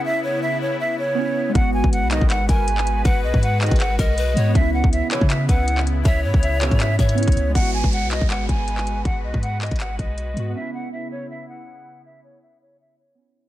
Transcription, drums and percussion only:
1.55 kick loud
1.55 closed hi-hat medium
1.84 kick medium
1.93 closed hi-hat medium
2.11 clap loud
2.11 closed hi-hat medium
2.21 kick loud
2.30 clap loud
2.30 closed hi-hat medium
2.49 kick medium
2.49 closed hi-hat medium
2.68 closed hi-hat medium
2.78 clap medium
2.87 closed hi-hat medium
3.05 kick loud
3.05 closed hi-hat medium
3.34 kick medium
3.43 closed hi-hat medium
3.61 clap loud
3.61 closed hi-hat soft
3.66 closed hi-hat medium
3.71 kick loud
3.71 closed hi-hat medium
3.76 closed hi-hat medium
3.80 clap loud
3.80 closed hi-hat medium
3.99 kick medium
3.99 closed hi-hat medium
4.18 closed hi-hat medium
4.37 closed hi-hat medium
4.55 kick loud
4.55 closed hi-hat medium
4.84 kick medium
4.93 closed hi-hat medium
5.11 clap loud
5.11 closed hi-hat medium
5.21 kick loud
5.30 clap loud
5.30 closed hi-hat medium
5.49 kick medium
5.49 closed hi-hat medium
5.68 closed hi-hat medium
5.78 clap medium
5.87 closed hi-hat medium
6.05 kick loud
6.05 closed hi-hat medium
6.34 kick medium
6.43 closed hi-hat medium
6.61 clap loud
6.61 closed hi-hat medium
6.61 open hi-hat medium
6.71 kick loud
6.71 closed hi-hat soft
6.80 clap loud
6.80 closed hi-hat medium
6.99 kick medium
6.99 closed hi-hat medium
7.09 closed hi-hat medium
7.18 closed hi-hat medium
7.23 closed hi-hat medium
7.28 kick loud
7.28 closed hi-hat medium
7.32 closed hi-hat medium
7.37 closed hi-hat medium
7.55 kick loud
7.55 closed hi-hat medium
7.84 kick medium
7.93 closed hi-hat medium
8.11 clap medium
8.11 closed hi-hat medium
8.21 kick medium
8.30 clap loud
8.30 closed hi-hat medium
8.49 kick medium
8.49 closed hi-hat medium
8.68 closed hi-hat medium
8.78 clap medium
8.87 closed hi-hat medium
9.05 kick loud
9.05 closed hi-hat medium
9.34 kick medium
9.43 closed hi-hat medium
9.61 clap loud
9.61 closed hi-hat soft
9.66 closed hi-hat medium
9.71 kick medium
9.71 closed hi-hat medium
9.76 closed hi-hat medium
9.80 clap loud
9.80 closed hi-hat medium
9.99 kick medium
9.99 closed hi-hat medium
10.18 closed hi-hat medium
10.37 closed hi-hat medium

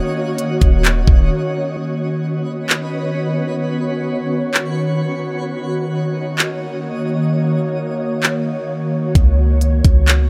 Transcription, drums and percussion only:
0.38 closed hi-hat medium
0.61 kick medium
0.61 closed hi-hat medium
0.85 clap loud
0.85 closed hi-hat medium
1.08 kick loud
2.69 clap loud
4.54 clap loud
6.39 clap loud
8.23 clap loud
9.15 kick loud
9.15 closed hi-hat medium
9.61 closed hi-hat medium
9.84 kick medium
9.84 closed hi-hat medium
10.07 clap loud
10.07 closed hi-hat medium

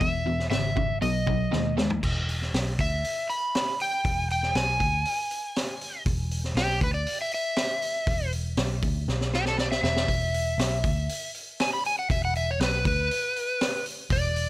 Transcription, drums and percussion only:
0.01 kick loud
0.01 open hi-hat soft
0.40 snare soft
0.51 snare loud
0.51 open hi-hat soft
0.77 kick medium
1.02 open hi-hat medium
1.27 kick medium
1.53 snare medium
1.78 snare medium
1.90 floor tom medium
2.03 kick loud
2.03 crash loud
2.29 open hi-hat soft
2.42 snare soft
2.54 snare loud
2.54 open hi-hat medium
2.79 kick loud
2.79 open hi-hat medium
3.04 open hi-hat medium
3.30 open hi-hat soft
3.55 snare loud
3.55 open hi-hat medium
3.80 open hi-hat medium
4.05 kick loud
4.05 open hi-hat medium
4.30 open hi-hat medium
4.43 snare soft
4.55 snare loud
4.55 open hi-hat medium
4.80 kick medium
4.80 open hi-hat medium
5.05 open hi-hat medium
5.31 open hi-hat medium
5.56 snare loud
5.56 open hi-hat medium
5.81 open hi-hat medium
6.06 kick loud
6.06 open hi-hat medium
6.31 open hi-hat medium
6.44 snare soft
6.57 snare loud
6.57 open hi-hat medium
6.81 kick loud
6.81 open hi-hat medium
7.07 open hi-hat medium
7.31 open hi-hat medium
7.56 snare loud
7.56 open hi-hat medium
7.82 open hi-hat medium
8.07 kick loud
8.07 open hi-hat medium
8.32 open hi-hat medium
8.57 snare loud
8.57 open hi-hat medium
8.83 kick loud
8.83 open hi-hat medium
9.08 snare medium
9.21 snare medium
9.34 snare medium
9.46 snare medium
9.58 snare medium
9.72 snare medium
9.84 snare medium
9.96 snare medium
10.08 kick medium
10.08 open hi-hat medium
10.34 open hi-hat medium
10.59 snare loud
10.59 open hi-hat medium
10.84 kick loud
10.84 open hi-hat medium
11.09 open hi-hat medium
11.34 open hi-hat medium
11.60 snare loud
11.60 open hi-hat medium
11.85 open hi-hat medium
12.10 kick loud
12.10 open hi-hat medium
12.35 open hi-hat medium
12.60 snare loud
12.60 open hi-hat medium
12.85 kick loud
12.85 open hi-hat medium
13.11 open hi-hat medium
13.36 open hi-hat medium
13.61 snare loud
13.61 open hi-hat medium
13.86 open hi-hat medium
14.10 kick loud
14.10 open hi-hat medium
14.36 open hi-hat medium

